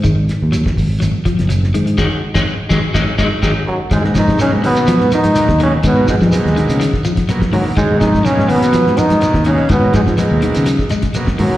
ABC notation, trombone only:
X:1
M:4/4
L:1/16
Q:"Swing 16ths" 1/4=124
K:G#dor
V:1 name="Trombone"
z16 | z12 z2 F,2 | G,2 D2 C2 B,4 D4 C2 | B,2 G, G,6 z4 z F,2 |
G,2 D2 C2 B,4 D4 C2 | B,2 G, G,6 z4 z F,2 |]